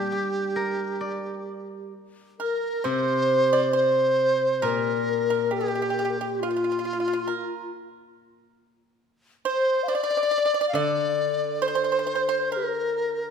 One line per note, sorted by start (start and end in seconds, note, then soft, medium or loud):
0.00 0.11 A#2 medium
0.00 1.92 G3 medium
0.00 1.47 D4 soft
0.00 1.89 G4 medium
0.00 1.93 G4 medium
0.12 1.93 G4 soft
0.56 2.40 A#4 soft
1.01 2.85 D5 soft
2.39 2.87 A#4 medium
2.39 2.82 A#4 medium
2.43 2.86 A#4 medium
2.84 4.63 C3 medium
2.84 3.48 C5 medium
2.84 3.75 C5 loud
2.84 3.74 C5 medium
3.53 3.73 D5 medium
3.73 4.59 C5 medium
3.73 4.65 C5 medium
3.73 4.66 C5 medium
4.62 7.28 A#2 medium
4.62 5.26 A#4 medium
4.62 5.54 A#4 medium
4.62 5.53 A#4 medium
5.30 5.51 A#4 medium
5.51 5.59 G4 medium
5.51 5.64 G4 medium
5.51 6.35 G4 medium
5.61 5.67 G4 soft
5.61 5.73 A#4 medium
5.68 5.74 G4 soft
5.68 5.80 G4 medium
5.75 5.81 G4 soft
5.75 5.87 A#4 medium
5.82 5.89 G4 medium
5.82 5.95 G4 medium
5.90 5.97 G4 soft
5.90 6.04 A#4 medium
5.99 6.04 G4 medium
6.03 6.12 G4 medium
6.03 6.11 G4 soft
6.10 6.20 A#4 medium
6.19 6.46 G4 medium
6.19 6.40 G4 medium
6.35 6.42 G4 soft
6.40 7.72 F4 medium
6.40 6.49 F4 medium
6.40 7.74 F4 medium
6.51 6.55 F4 soft
6.56 6.63 F4 soft
6.64 6.70 F4 soft
6.72 6.78 F4 soft
6.79 6.84 F4 soft
6.85 6.92 F4 soft
6.93 6.99 F4 soft
7.00 7.07 F4 soft
7.08 7.12 F4 soft
7.13 7.21 F4 medium
7.27 7.69 A#4 medium
9.45 9.86 C5 medium
9.45 9.85 C5 medium
9.45 9.96 C5 medium
9.83 9.90 F5 medium
9.88 10.75 D5 medium
9.88 9.94 D5 medium
9.95 10.68 D5 loud
9.95 10.02 D5 medium
10.03 10.09 D5 medium
10.11 10.16 D5 medium
10.17 10.22 D5 medium
10.23 10.30 D5 soft
10.31 10.37 D5 medium
10.38 10.44 D5 medium
10.46 10.53 D5 medium
10.54 10.60 D5 medium
10.61 10.68 D5 medium
10.69 10.80 F5 medium
10.73 13.30 D3 medium
10.73 11.58 D5 medium
10.73 11.56 D5 medium
10.78 11.64 D5 medium
11.56 11.66 D5 medium
11.62 11.67 C5 medium
11.62 12.54 C5 medium
11.62 12.52 C5 medium
11.68 11.74 C5 medium
11.75 11.83 C5 medium
11.84 11.91 C5 medium
11.92 11.98 C5 medium
11.99 12.06 C5 medium
12.07 12.13 C5 medium
12.15 12.21 C5 medium
12.29 12.49 C5 medium
12.51 12.58 A#4 medium
12.51 13.30 A#4 medium
12.56 12.66 G4 medium
12.65 13.15 A#4 medium
13.15 13.30 A#4 medium